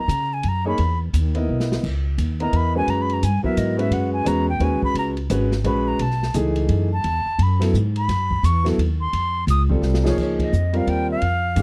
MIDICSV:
0, 0, Header, 1, 6, 480
1, 0, Start_track
1, 0, Key_signature, 4, "minor"
1, 0, Tempo, 347423
1, 1094, Time_signature, 3, 2, 24, 8
1, 16058, End_track
2, 0, Start_track
2, 0, Title_t, "Flute"
2, 0, Program_c, 0, 73
2, 0, Note_on_c, 0, 82, 87
2, 463, Note_on_c, 0, 80, 77
2, 484, Note_off_c, 0, 82, 0
2, 669, Note_on_c, 0, 82, 82
2, 690, Note_off_c, 0, 80, 0
2, 928, Note_off_c, 0, 82, 0
2, 936, Note_on_c, 0, 83, 91
2, 1371, Note_off_c, 0, 83, 0
2, 3331, Note_on_c, 0, 82, 80
2, 3541, Note_on_c, 0, 83, 93
2, 3562, Note_off_c, 0, 82, 0
2, 3816, Note_off_c, 0, 83, 0
2, 3830, Note_on_c, 0, 80, 104
2, 4007, Note_on_c, 0, 82, 87
2, 4028, Note_off_c, 0, 80, 0
2, 4171, Note_on_c, 0, 83, 106
2, 4191, Note_off_c, 0, 82, 0
2, 4331, Note_on_c, 0, 82, 71
2, 4351, Note_off_c, 0, 83, 0
2, 4474, Note_on_c, 0, 80, 83
2, 4495, Note_off_c, 0, 82, 0
2, 4751, Note_off_c, 0, 80, 0
2, 4759, Note_on_c, 0, 76, 86
2, 4947, Note_on_c, 0, 75, 73
2, 4968, Note_off_c, 0, 76, 0
2, 5239, Note_off_c, 0, 75, 0
2, 5245, Note_on_c, 0, 76, 89
2, 5432, Note_on_c, 0, 78, 77
2, 5452, Note_off_c, 0, 76, 0
2, 5702, Note_off_c, 0, 78, 0
2, 5710, Note_on_c, 0, 80, 83
2, 5907, Note_on_c, 0, 82, 92
2, 5928, Note_off_c, 0, 80, 0
2, 6199, Note_off_c, 0, 82, 0
2, 6209, Note_on_c, 0, 79, 90
2, 6408, Note_on_c, 0, 80, 83
2, 6429, Note_off_c, 0, 79, 0
2, 6683, Note_off_c, 0, 80, 0
2, 6692, Note_on_c, 0, 83, 112
2, 6852, Note_off_c, 0, 83, 0
2, 6885, Note_on_c, 0, 82, 85
2, 7055, Note_off_c, 0, 82, 0
2, 7831, Note_on_c, 0, 83, 82
2, 8123, Note_on_c, 0, 82, 96
2, 8144, Note_off_c, 0, 83, 0
2, 8314, Note_on_c, 0, 81, 84
2, 8335, Note_off_c, 0, 82, 0
2, 8785, Note_off_c, 0, 81, 0
2, 9572, Note_on_c, 0, 81, 93
2, 10261, Note_on_c, 0, 83, 82
2, 10282, Note_off_c, 0, 81, 0
2, 10536, Note_off_c, 0, 83, 0
2, 11020, Note_on_c, 0, 83, 96
2, 11677, Note_on_c, 0, 85, 102
2, 11698, Note_off_c, 0, 83, 0
2, 11964, Note_off_c, 0, 85, 0
2, 12445, Note_on_c, 0, 84, 95
2, 13055, Note_off_c, 0, 84, 0
2, 13129, Note_on_c, 0, 87, 90
2, 13297, Note_off_c, 0, 87, 0
2, 13904, Note_on_c, 0, 73, 84
2, 14059, Note_off_c, 0, 73, 0
2, 14110, Note_on_c, 0, 73, 71
2, 14362, Note_off_c, 0, 73, 0
2, 14409, Note_on_c, 0, 75, 73
2, 14879, Note_on_c, 0, 77, 81
2, 14899, Note_off_c, 0, 75, 0
2, 15049, Note_on_c, 0, 79, 91
2, 15070, Note_off_c, 0, 77, 0
2, 15331, Note_off_c, 0, 79, 0
2, 15352, Note_on_c, 0, 77, 97
2, 16058, Note_off_c, 0, 77, 0
2, 16058, End_track
3, 0, Start_track
3, 0, Title_t, "Grand piano"
3, 0, Program_c, 1, 0
3, 896, Note_on_c, 1, 58, 80
3, 907, Note_on_c, 1, 63, 65
3, 915, Note_on_c, 1, 68, 68
3, 916, Note_on_c, 1, 73, 76
3, 1068, Note_off_c, 1, 58, 0
3, 1073, Note_off_c, 1, 63, 0
3, 1077, Note_off_c, 1, 68, 0
3, 1078, Note_off_c, 1, 73, 0
3, 1863, Note_on_c, 1, 59, 56
3, 1873, Note_on_c, 1, 64, 61
3, 1873, Note_on_c, 1, 70, 56
3, 1889, Note_on_c, 1, 75, 65
3, 2493, Note_off_c, 1, 59, 0
3, 2498, Note_off_c, 1, 64, 0
3, 2498, Note_off_c, 1, 70, 0
3, 2506, Note_off_c, 1, 75, 0
3, 3319, Note_on_c, 1, 59, 57
3, 3332, Note_on_c, 1, 64, 52
3, 3337, Note_on_c, 1, 70, 63
3, 3345, Note_on_c, 1, 75, 66
3, 3766, Note_off_c, 1, 59, 0
3, 3772, Note_off_c, 1, 64, 0
3, 3775, Note_off_c, 1, 70, 0
3, 3779, Note_off_c, 1, 75, 0
3, 3798, Note_on_c, 1, 56, 58
3, 3803, Note_on_c, 1, 61, 56
3, 3803, Note_on_c, 1, 66, 60
3, 3814, Note_on_c, 1, 71, 69
3, 4421, Note_off_c, 1, 56, 0
3, 4423, Note_off_c, 1, 61, 0
3, 4423, Note_off_c, 1, 66, 0
3, 4429, Note_off_c, 1, 71, 0
3, 4740, Note_on_c, 1, 54, 68
3, 4750, Note_on_c, 1, 59, 64
3, 4759, Note_on_c, 1, 64, 60
3, 4764, Note_on_c, 1, 70, 74
3, 5196, Note_off_c, 1, 54, 0
3, 5202, Note_off_c, 1, 59, 0
3, 5206, Note_off_c, 1, 64, 0
3, 5209, Note_off_c, 1, 70, 0
3, 5209, Note_on_c, 1, 56, 63
3, 5219, Note_on_c, 1, 61, 59
3, 5228, Note_on_c, 1, 66, 58
3, 5234, Note_on_c, 1, 71, 70
3, 5847, Note_off_c, 1, 56, 0
3, 5852, Note_off_c, 1, 61, 0
3, 5856, Note_off_c, 1, 66, 0
3, 5859, Note_off_c, 1, 71, 0
3, 5867, Note_on_c, 1, 56, 68
3, 5877, Note_on_c, 1, 61, 63
3, 5885, Note_on_c, 1, 66, 60
3, 5894, Note_on_c, 1, 71, 67
3, 6149, Note_off_c, 1, 56, 0
3, 6154, Note_off_c, 1, 61, 0
3, 6158, Note_off_c, 1, 66, 0
3, 6162, Note_off_c, 1, 71, 0
3, 6357, Note_on_c, 1, 61, 54
3, 6361, Note_on_c, 1, 56, 57
3, 6366, Note_on_c, 1, 66, 59
3, 6370, Note_on_c, 1, 71, 62
3, 7084, Note_off_c, 1, 61, 0
3, 7087, Note_off_c, 1, 56, 0
3, 7089, Note_off_c, 1, 66, 0
3, 7091, Note_off_c, 1, 71, 0
3, 7321, Note_on_c, 1, 56, 64
3, 7322, Note_on_c, 1, 61, 62
3, 7333, Note_on_c, 1, 66, 63
3, 7336, Note_on_c, 1, 71, 78
3, 7596, Note_off_c, 1, 56, 0
3, 7596, Note_off_c, 1, 61, 0
3, 7602, Note_off_c, 1, 66, 0
3, 7604, Note_off_c, 1, 71, 0
3, 7797, Note_on_c, 1, 61, 63
3, 7798, Note_on_c, 1, 56, 76
3, 7816, Note_on_c, 1, 66, 59
3, 7822, Note_on_c, 1, 71, 75
3, 8286, Note_off_c, 1, 61, 0
3, 8287, Note_off_c, 1, 56, 0
3, 8296, Note_off_c, 1, 66, 0
3, 8299, Note_off_c, 1, 71, 0
3, 8764, Note_on_c, 1, 57, 61
3, 8765, Note_on_c, 1, 52, 69
3, 8773, Note_on_c, 1, 63, 63
3, 8777, Note_on_c, 1, 68, 75
3, 9488, Note_off_c, 1, 52, 0
3, 9488, Note_off_c, 1, 57, 0
3, 9492, Note_off_c, 1, 63, 0
3, 9495, Note_off_c, 1, 68, 0
3, 10493, Note_on_c, 1, 54, 70
3, 10501, Note_on_c, 1, 59, 60
3, 10511, Note_on_c, 1, 64, 64
3, 10514, Note_on_c, 1, 69, 80
3, 10667, Note_off_c, 1, 54, 0
3, 10671, Note_off_c, 1, 59, 0
3, 10676, Note_off_c, 1, 64, 0
3, 10678, Note_off_c, 1, 69, 0
3, 11935, Note_on_c, 1, 54, 77
3, 11947, Note_on_c, 1, 59, 65
3, 11958, Note_on_c, 1, 64, 72
3, 11959, Note_on_c, 1, 69, 79
3, 12108, Note_off_c, 1, 54, 0
3, 12114, Note_off_c, 1, 59, 0
3, 12119, Note_off_c, 1, 64, 0
3, 12120, Note_off_c, 1, 69, 0
3, 13392, Note_on_c, 1, 55, 67
3, 13393, Note_on_c, 1, 60, 53
3, 13407, Note_on_c, 1, 65, 53
3, 13411, Note_on_c, 1, 69, 70
3, 13843, Note_off_c, 1, 55, 0
3, 13843, Note_off_c, 1, 60, 0
3, 13850, Note_off_c, 1, 65, 0
3, 13852, Note_off_c, 1, 69, 0
3, 13868, Note_on_c, 1, 53, 82
3, 13875, Note_on_c, 1, 58, 72
3, 13879, Note_on_c, 1, 63, 65
3, 13884, Note_on_c, 1, 68, 78
3, 14497, Note_off_c, 1, 53, 0
3, 14501, Note_off_c, 1, 58, 0
3, 14502, Note_off_c, 1, 63, 0
3, 14505, Note_off_c, 1, 68, 0
3, 14818, Note_on_c, 1, 55, 60
3, 14832, Note_on_c, 1, 60, 58
3, 14839, Note_on_c, 1, 65, 61
3, 14840, Note_on_c, 1, 70, 76
3, 15453, Note_off_c, 1, 55, 0
3, 15460, Note_off_c, 1, 60, 0
3, 15463, Note_off_c, 1, 65, 0
3, 15464, Note_off_c, 1, 70, 0
3, 15966, Note_on_c, 1, 51, 56
3, 15972, Note_on_c, 1, 56, 50
3, 15973, Note_on_c, 1, 61, 47
3, 15990, Note_on_c, 1, 67, 62
3, 16058, Note_off_c, 1, 51, 0
3, 16058, Note_off_c, 1, 56, 0
3, 16058, Note_off_c, 1, 61, 0
3, 16058, Note_off_c, 1, 67, 0
3, 16058, End_track
4, 0, Start_track
4, 0, Title_t, "Upright bass"
4, 0, Program_c, 2, 32
4, 111, Note_on_c, 2, 49, 94
4, 587, Note_off_c, 2, 49, 0
4, 606, Note_on_c, 2, 42, 80
4, 1075, Note_off_c, 2, 42, 0
4, 1085, Note_on_c, 2, 40, 80
4, 1555, Note_off_c, 2, 40, 0
4, 1567, Note_on_c, 2, 39, 104
4, 2036, Note_off_c, 2, 39, 0
4, 2058, Note_on_c, 2, 35, 76
4, 2521, Note_off_c, 2, 35, 0
4, 2531, Note_on_c, 2, 37, 73
4, 2998, Note_off_c, 2, 37, 0
4, 3012, Note_on_c, 2, 39, 89
4, 3479, Note_off_c, 2, 39, 0
4, 3487, Note_on_c, 2, 40, 73
4, 3956, Note_off_c, 2, 40, 0
4, 3968, Note_on_c, 2, 42, 74
4, 4437, Note_off_c, 2, 42, 0
4, 4458, Note_on_c, 2, 43, 89
4, 4734, Note_off_c, 2, 43, 0
4, 4932, Note_on_c, 2, 44, 89
4, 5385, Note_off_c, 2, 44, 0
4, 5393, Note_on_c, 2, 42, 74
4, 5869, Note_off_c, 2, 42, 0
4, 5883, Note_on_c, 2, 40, 93
4, 6342, Note_off_c, 2, 40, 0
4, 6350, Note_on_c, 2, 39, 86
4, 6639, Note_off_c, 2, 39, 0
4, 6830, Note_on_c, 2, 37, 77
4, 7308, Note_off_c, 2, 37, 0
4, 7320, Note_on_c, 2, 32, 88
4, 7784, Note_off_c, 2, 32, 0
4, 7792, Note_on_c, 2, 34, 75
4, 8269, Note_off_c, 2, 34, 0
4, 8279, Note_on_c, 2, 35, 74
4, 8753, Note_off_c, 2, 35, 0
4, 8765, Note_on_c, 2, 37, 96
4, 9231, Note_off_c, 2, 37, 0
4, 9239, Note_on_c, 2, 42, 91
4, 9713, Note_off_c, 2, 42, 0
4, 9730, Note_on_c, 2, 40, 82
4, 10009, Note_off_c, 2, 40, 0
4, 10204, Note_on_c, 2, 42, 90
4, 10675, Note_off_c, 2, 42, 0
4, 10687, Note_on_c, 2, 44, 92
4, 11156, Note_off_c, 2, 44, 0
4, 11168, Note_on_c, 2, 42, 88
4, 11637, Note_off_c, 2, 42, 0
4, 11647, Note_on_c, 2, 40, 98
4, 12116, Note_off_c, 2, 40, 0
4, 12128, Note_on_c, 2, 39, 77
4, 12597, Note_off_c, 2, 39, 0
4, 12613, Note_on_c, 2, 41, 79
4, 13075, Note_off_c, 2, 41, 0
4, 13083, Note_on_c, 2, 37, 96
4, 13555, Note_off_c, 2, 37, 0
4, 13562, Note_on_c, 2, 36, 78
4, 14034, Note_off_c, 2, 36, 0
4, 14057, Note_on_c, 2, 37, 65
4, 14522, Note_off_c, 2, 37, 0
4, 14544, Note_on_c, 2, 41, 96
4, 15006, Note_off_c, 2, 41, 0
4, 15013, Note_on_c, 2, 39, 75
4, 15481, Note_off_c, 2, 39, 0
4, 15498, Note_on_c, 2, 41, 69
4, 15964, Note_off_c, 2, 41, 0
4, 15974, Note_on_c, 2, 44, 89
4, 16058, Note_off_c, 2, 44, 0
4, 16058, End_track
5, 0, Start_track
5, 0, Title_t, "Muted upright bass strokes"
5, 4754, Note_on_c, 9, 29, 42
5, 4892, Note_off_c, 9, 29, 0
5, 6657, Note_on_c, 9, 29, 43
5, 6796, Note_off_c, 9, 29, 0
5, 10024, Note_on_c, 9, 29, 42
5, 10162, Note_off_c, 9, 29, 0
5, 16058, End_track
6, 0, Start_track
6, 0, Title_t, "Drums"
6, 127, Note_on_c, 9, 44, 59
6, 127, Note_on_c, 9, 51, 63
6, 265, Note_off_c, 9, 44, 0
6, 265, Note_off_c, 9, 51, 0
6, 597, Note_on_c, 9, 51, 60
6, 735, Note_off_c, 9, 51, 0
6, 1074, Note_on_c, 9, 51, 63
6, 1212, Note_off_c, 9, 51, 0
6, 1573, Note_on_c, 9, 44, 60
6, 1573, Note_on_c, 9, 51, 71
6, 1711, Note_off_c, 9, 44, 0
6, 1711, Note_off_c, 9, 51, 0
6, 1861, Note_on_c, 9, 51, 43
6, 1999, Note_off_c, 9, 51, 0
6, 2211, Note_on_c, 9, 38, 59
6, 2349, Note_off_c, 9, 38, 0
6, 2376, Note_on_c, 9, 38, 81
6, 2514, Note_off_c, 9, 38, 0
6, 2537, Note_on_c, 9, 36, 74
6, 2538, Note_on_c, 9, 49, 73
6, 2675, Note_off_c, 9, 36, 0
6, 2676, Note_off_c, 9, 49, 0
6, 3016, Note_on_c, 9, 44, 46
6, 3016, Note_on_c, 9, 51, 64
6, 3154, Note_off_c, 9, 44, 0
6, 3154, Note_off_c, 9, 51, 0
6, 3316, Note_on_c, 9, 51, 43
6, 3454, Note_off_c, 9, 51, 0
6, 3494, Note_on_c, 9, 51, 58
6, 3632, Note_off_c, 9, 51, 0
6, 3975, Note_on_c, 9, 51, 55
6, 4113, Note_off_c, 9, 51, 0
6, 4276, Note_on_c, 9, 51, 42
6, 4415, Note_off_c, 9, 51, 0
6, 4460, Note_on_c, 9, 44, 66
6, 4460, Note_on_c, 9, 51, 66
6, 4598, Note_off_c, 9, 44, 0
6, 4598, Note_off_c, 9, 51, 0
6, 4755, Note_on_c, 9, 36, 52
6, 4893, Note_off_c, 9, 36, 0
6, 4934, Note_on_c, 9, 44, 60
6, 4934, Note_on_c, 9, 51, 67
6, 5072, Note_off_c, 9, 44, 0
6, 5072, Note_off_c, 9, 51, 0
6, 5237, Note_on_c, 9, 51, 50
6, 5375, Note_off_c, 9, 51, 0
6, 5410, Note_on_c, 9, 51, 64
6, 5548, Note_off_c, 9, 51, 0
6, 5889, Note_on_c, 9, 44, 54
6, 5889, Note_on_c, 9, 51, 69
6, 6027, Note_off_c, 9, 44, 0
6, 6027, Note_off_c, 9, 51, 0
6, 6359, Note_on_c, 9, 51, 59
6, 6497, Note_off_c, 9, 51, 0
6, 6666, Note_on_c, 9, 36, 66
6, 6804, Note_off_c, 9, 36, 0
6, 6843, Note_on_c, 9, 51, 64
6, 6982, Note_off_c, 9, 51, 0
6, 7141, Note_on_c, 9, 51, 44
6, 7279, Note_off_c, 9, 51, 0
6, 7319, Note_on_c, 9, 44, 58
6, 7319, Note_on_c, 9, 51, 73
6, 7457, Note_off_c, 9, 44, 0
6, 7457, Note_off_c, 9, 51, 0
6, 7620, Note_on_c, 9, 38, 50
6, 7759, Note_off_c, 9, 38, 0
6, 7797, Note_on_c, 9, 51, 61
6, 7935, Note_off_c, 9, 51, 0
6, 8279, Note_on_c, 9, 51, 66
6, 8417, Note_off_c, 9, 51, 0
6, 8438, Note_on_c, 9, 38, 24
6, 8577, Note_off_c, 9, 38, 0
6, 8602, Note_on_c, 9, 38, 41
6, 8740, Note_off_c, 9, 38, 0
6, 8761, Note_on_c, 9, 44, 60
6, 8761, Note_on_c, 9, 51, 61
6, 8899, Note_off_c, 9, 44, 0
6, 8899, Note_off_c, 9, 51, 0
6, 9058, Note_on_c, 9, 51, 48
6, 9196, Note_off_c, 9, 51, 0
6, 9238, Note_on_c, 9, 51, 64
6, 9376, Note_off_c, 9, 51, 0
6, 9725, Note_on_c, 9, 51, 64
6, 9863, Note_off_c, 9, 51, 0
6, 10210, Note_on_c, 9, 51, 65
6, 10349, Note_off_c, 9, 51, 0
6, 10521, Note_on_c, 9, 51, 72
6, 10523, Note_on_c, 9, 38, 41
6, 10659, Note_off_c, 9, 51, 0
6, 10661, Note_off_c, 9, 38, 0
6, 10696, Note_on_c, 9, 44, 62
6, 10834, Note_off_c, 9, 44, 0
6, 10994, Note_on_c, 9, 51, 52
6, 11132, Note_off_c, 9, 51, 0
6, 11176, Note_on_c, 9, 51, 68
6, 11177, Note_on_c, 9, 38, 36
6, 11314, Note_off_c, 9, 51, 0
6, 11315, Note_off_c, 9, 38, 0
6, 11476, Note_on_c, 9, 36, 57
6, 11614, Note_off_c, 9, 36, 0
6, 11663, Note_on_c, 9, 44, 64
6, 11663, Note_on_c, 9, 51, 64
6, 11801, Note_off_c, 9, 44, 0
6, 11801, Note_off_c, 9, 51, 0
6, 11965, Note_on_c, 9, 51, 52
6, 11967, Note_on_c, 9, 38, 38
6, 12103, Note_off_c, 9, 51, 0
6, 12105, Note_off_c, 9, 38, 0
6, 12146, Note_on_c, 9, 51, 62
6, 12285, Note_off_c, 9, 51, 0
6, 12617, Note_on_c, 9, 51, 61
6, 12755, Note_off_c, 9, 51, 0
6, 13099, Note_on_c, 9, 44, 50
6, 13099, Note_on_c, 9, 51, 71
6, 13237, Note_off_c, 9, 44, 0
6, 13237, Note_off_c, 9, 51, 0
6, 13393, Note_on_c, 9, 36, 65
6, 13531, Note_off_c, 9, 36, 0
6, 13570, Note_on_c, 9, 38, 47
6, 13708, Note_off_c, 9, 38, 0
6, 13734, Note_on_c, 9, 38, 62
6, 13873, Note_off_c, 9, 38, 0
6, 13894, Note_on_c, 9, 38, 88
6, 14032, Note_off_c, 9, 38, 0
6, 14059, Note_on_c, 9, 36, 75
6, 14063, Note_on_c, 9, 49, 69
6, 14197, Note_off_c, 9, 36, 0
6, 14201, Note_off_c, 9, 49, 0
6, 14360, Note_on_c, 9, 36, 76
6, 14365, Note_on_c, 9, 51, 64
6, 14498, Note_off_c, 9, 36, 0
6, 14504, Note_off_c, 9, 51, 0
6, 14546, Note_on_c, 9, 44, 61
6, 14685, Note_off_c, 9, 44, 0
6, 14832, Note_on_c, 9, 51, 40
6, 14970, Note_off_c, 9, 51, 0
6, 15023, Note_on_c, 9, 51, 51
6, 15161, Note_off_c, 9, 51, 0
6, 15495, Note_on_c, 9, 51, 55
6, 15633, Note_off_c, 9, 51, 0
6, 15973, Note_on_c, 9, 44, 60
6, 15973, Note_on_c, 9, 51, 60
6, 16058, Note_off_c, 9, 44, 0
6, 16058, Note_off_c, 9, 51, 0
6, 16058, End_track
0, 0, End_of_file